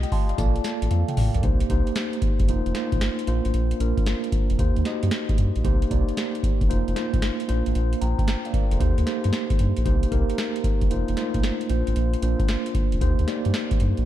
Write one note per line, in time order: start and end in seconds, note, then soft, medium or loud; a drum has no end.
0.00 0.39 A3 medium
0.00 0.38 F4 medium
0.00 0.40 G4 medium
0.00 0.04 D#5 loud
0.00 0.12 D#5 medium
0.00 0.11 G5 medium
0.00 closed hi-hat medium
0.12 0.28 F5 medium
0.12 0.29 A5 medium
0.12 0.36 C6 medium
0.12 kick medium
0.12 open hi-hat medium
0.29 0.38 D5 medium
0.29 0.55 F5 medium
0.29 closed hi-hat soft
0.38 0.58 A#1 loud
0.38 1.05 A#3 medium
0.38 1.05 F4 medium
0.38 0.65 A4 medium
0.38 0.65 D5 loud
0.38 0.63 A5 medium
0.38 kick loud
0.38 closed hi-hat medium
0.38 tambourine medium
0.56 closed hi-hat soft
0.64 snare medium
0.64 closed hi-hat medium
0.64 tambourine medium
0.82 0.89 A1 medium
0.82 closed hi-hat medium
0.91 1.04 F2 loud
0.91 1.15 F5 medium
0.91 closed hi-hat medium
0.91 high tom medium
1.08 1.17 G5 medium
1.08 closed hi-hat medium
1.08 mid tom medium
1.17 1.30 A1 medium
1.17 1.34 D5 medium
1.17 1.42 F5 medium
1.17 mid tom loud
1.17 open hi-hat medium
1.34 1.41 A#1 medium
1.34 1.60 A#4 medium
1.34 1.60 D5 medium
1.34 closed hi-hat soft
1.34 floor tom medium
1.43 1.63 C2 loud
1.43 1.66 A#3 medium
1.43 1.66 D#4 medium
1.43 1.67 G4 medium
1.43 1.67 C5 medium
1.43 kick loud
1.43 closed hi-hat medium
1.60 closed hi-hat medium
1.69 1.83 C2 medium
1.69 2.47 A#3 medium
1.69 2.48 D#4 medium
1.69 2.49 G4 medium
1.69 2.48 C5 medium
1.69 kick medium
1.69 closed hi-hat medium
1.87 closed hi-hat soft
1.96 snare loud
1.96 closed hi-hat medium
2.13 closed hi-hat medium
2.22 2.29 G1 soft
2.22 kick medium
2.22 closed hi-hat medium
2.40 2.46 G1 medium
2.40 kick medium
2.40 closed hi-hat medium
2.48 2.62 F1 loud
2.48 2.71 A#3 medium
2.48 2.72 D#4 medium
2.48 2.72 F4 medium
2.48 2.72 C5 medium
2.48 closed hi-hat medium
2.66 2.73 F1 medium
2.66 closed hi-hat soft
2.75 3.26 A#3 medium
2.75 3.28 D#4 medium
2.75 3.27 F4 medium
2.75 3.27 C5 medium
2.75 snare medium
2.75 closed hi-hat medium
2.92 2.99 A#1 medium
2.92 kick medium
2.92 closed hi-hat medium
3.01 snare loud
3.01 closed hi-hat medium
3.19 closed hi-hat soft
3.27 3.41 A#1 medium
3.27 3.73 A#3 medium
3.27 3.73 D4 medium
3.27 3.73 F4 medium
3.27 3.74 C5 medium
3.27 closed hi-hat medium
3.45 3.52 A1 medium
3.45 closed hi-hat soft
3.54 3.74 A#1 loud
3.54 closed hi-hat medium
3.71 closed hi-hat medium
3.80 3.93 A#1 medium
3.80 4.57 A#3 medium
3.80 4.59 D4 medium
3.80 4.59 F4 medium
3.80 4.60 A#4 medium
3.80 closed hi-hat medium
3.97 kick medium
3.97 closed hi-hat soft
4.06 snare loud
4.06 closed hi-hat medium
4.24 closed hi-hat medium
4.32 4.40 F1 soft
4.32 kick medium
4.32 closed hi-hat medium
4.50 4.57 F1 medium
4.50 closed hi-hat soft
4.59 4.72 D#2 loud
4.59 4.82 A#3 medium
4.59 4.82 D#4 medium
4.59 4.82 G4 medium
4.59 4.83 C5 medium
4.59 kick medium
4.59 closed hi-hat medium
4.76 4.83 D#2 medium
4.76 closed hi-hat soft
4.85 5.52 A#3 medium
4.85 5.52 D#4 medium
4.85 4.94 F#4 medium
4.85 5.53 D#5 medium
4.85 snare medium
4.85 closed hi-hat medium
4.92 5.56 G4 medium
5.03 5.10 G2 medium
5.03 closed hi-hat medium
5.11 snare loud
5.11 closed hi-hat medium
5.29 kick loud
5.29 closed hi-hat medium
5.38 5.51 G2 medium
5.38 closed hi-hat medium
5.56 5.63 A#1 loud
5.56 closed hi-hat soft
5.64 5.84 C2 loud
5.64 5.87 A#3 medium
5.64 5.87 D#4 medium
5.64 5.88 G4 medium
5.64 5.88 C5 medium
5.64 kick loud
5.64 closed hi-hat medium
5.82 closed hi-hat medium
5.90 6.04 C2 medium
5.90 6.68 A#3 medium
5.90 6.68 D#4 medium
5.90 6.70 G4 medium
5.90 6.70 D5 medium
5.90 kick medium
5.90 closed hi-hat medium
6.09 closed hi-hat medium
6.17 snare loud
6.17 closed hi-hat medium
6.35 closed hi-hat medium
6.43 6.51 G1 soft
6.43 kick medium
6.43 closed hi-hat medium
6.61 6.68 G1 medium
6.61 kick medium
6.61 closed hi-hat soft
6.69 6.83 F1 loud
6.69 6.92 A#3 medium
6.69 6.92 D#4 medium
6.69 6.93 F4 medium
6.69 6.93 C5 medium
6.69 closed hi-hat medium
6.88 6.94 F1 medium
6.88 closed hi-hat medium
6.95 7.47 A#3 medium
6.95 7.48 D#4 medium
6.95 7.47 F4 medium
6.95 7.48 C5 medium
6.95 snare medium
6.95 closed hi-hat medium
7.13 7.20 A#1 medium
7.13 kick medium
7.13 closed hi-hat medium
7.22 snare loud
7.22 closed hi-hat medium
7.40 closed hi-hat medium
7.48 7.62 A#1 medium
7.48 7.94 A#3 medium
7.48 7.94 D4 medium
7.48 7.94 F4 medium
7.48 7.95 C5 medium
7.48 closed hi-hat medium
7.66 7.73 A1 medium
7.66 closed hi-hat medium
7.75 7.95 A#1 loud
7.75 closed hi-hat medium
7.93 closed hi-hat medium
8.01 8.15 A#1 loud
8.01 8.18 G5 medium
8.01 8.18 A#5 medium
8.01 closed hi-hat medium
8.19 8.44 G5 medium
8.19 kick medium
8.19 closed hi-hat soft
8.28 snare loud
8.28 closed hi-hat medium
8.45 8.53 D5 medium
8.45 8.54 F5 medium
8.45 closed hi-hat medium
8.53 8.61 F1 soft
8.53 8.71 A#4 medium
8.53 8.71 D5 medium
8.53 kick medium
8.53 closed hi-hat medium
8.71 8.78 F1 medium
8.71 8.97 A4 medium
8.71 8.80 C5 medium
8.71 closed hi-hat medium
8.80 8.93 D#2 loud
8.80 9.03 A#3 medium
8.80 9.03 D#4 medium
8.80 9.03 G4 medium
8.80 9.03 C5 medium
8.80 kick loud
8.80 closed hi-hat medium
8.98 9.05 D#2 medium
8.98 closed hi-hat soft
9.06 9.73 A#3 medium
9.06 9.74 D#4 medium
9.06 9.74 G4 medium
9.06 9.74 C5 medium
9.06 snare medium
9.06 closed hi-hat medium
9.24 9.31 G2 medium
9.24 closed hi-hat medium
9.33 snare loud
9.33 closed hi-hat medium
9.50 kick loud
9.50 closed hi-hat soft
9.59 9.73 G2 medium
9.59 closed hi-hat medium
9.77 9.84 A#1 medium
9.77 closed hi-hat medium
9.85 10.05 C2 loud
9.85 10.08 A#3 medium
9.85 10.08 D#4 medium
9.85 10.09 G4 medium
9.85 10.09 C5 medium
9.85 kick loud
9.85 closed hi-hat medium
10.03 closed hi-hat medium
10.11 10.25 C2 medium
10.11 10.89 A#3 medium
10.11 10.90 D#4 medium
10.11 10.91 G4 medium
10.11 10.91 A#4 medium
10.11 kick medium
10.11 closed hi-hat medium
10.30 closed hi-hat medium
10.38 snare loud
10.38 closed hi-hat medium
10.56 closed hi-hat medium
10.64 10.71 G1 soft
10.64 kick medium
10.64 closed hi-hat medium
10.81 10.89 G1 medium
10.81 kick medium
10.81 closed hi-hat medium
10.90 11.04 F1 loud
10.90 11.13 A#3 medium
10.90 11.14 D#4 medium
10.90 11.14 F4 medium
10.90 11.14 C5 medium
10.90 closed hi-hat medium
11.08 11.15 F1 medium
11.08 closed hi-hat medium
11.16 11.25 A3 medium
11.16 11.70 D#4 medium
11.16 11.69 F4 medium
11.16 11.69 C5 medium
11.16 snare medium
11.16 closed hi-hat medium
11.23 11.68 A#3 medium
11.34 11.41 A#1 medium
11.34 kick medium
11.34 closed hi-hat medium
11.43 snare loud
11.43 closed hi-hat medium
11.61 closed hi-hat medium
11.69 11.83 A#1 medium
11.69 12.15 A#3 medium
11.69 12.15 D4 medium
11.69 12.16 F4 medium
11.69 12.16 C5 medium
11.69 closed hi-hat medium
11.87 11.94 A1 medium
11.87 closed hi-hat soft
11.96 12.16 A#1 loud
11.96 closed hi-hat medium
12.14 closed hi-hat medium
12.22 12.36 A#1 loud
12.22 13.00 A#3 medium
12.22 13.01 D4 medium
12.22 13.01 F4 medium
12.22 13.01 C5 medium
12.22 closed hi-hat medium
12.39 kick medium
12.39 closed hi-hat soft
12.48 snare loud
12.48 closed hi-hat medium
12.66 closed hi-hat medium
12.75 12.82 F1 soft
12.75 kick medium
12.75 closed hi-hat medium
12.92 13.00 F1 medium
12.92 closed hi-hat medium
13.01 13.14 D#2 loud
13.01 13.24 A#3 medium
13.01 13.24 D#4 medium
13.01 13.24 G4 medium
13.01 13.25 C5 loud
13.01 kick medium
13.01 closed hi-hat medium
13.19 13.26 D#2 loud
13.19 closed hi-hat soft
13.27 13.95 A#3 medium
13.27 13.95 D#4 medium
13.27 13.95 G4 medium
13.27 13.95 D5 medium
13.27 snare medium
13.27 closed hi-hat medium
13.45 13.52 G2 medium
13.45 closed hi-hat medium
13.54 snare loud
13.54 closed hi-hat medium
13.71 kick loud
13.71 closed hi-hat medium
13.80 13.94 G2 medium
13.80 closed hi-hat medium
13.97 14.05 A#1 medium
13.97 closed hi-hat soft